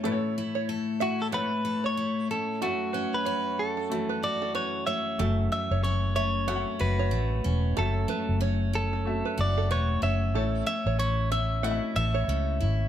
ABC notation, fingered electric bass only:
X:1
M:4/4
L:1/16
Q:"Swing 16ths" 1/4=93
K:F#m
V:1 name="Fingered electric bass" clef=bass
z16 | z16 | F,,,2 z F,,,6 z F,,,2 A,,,2 E,,,2 | F,,,2 z F,,,6 z F,,,2 E,,,2 F,,,2 |
A,,,2 z A,,,6 z A,,,2 C,,2 G,,,2 |]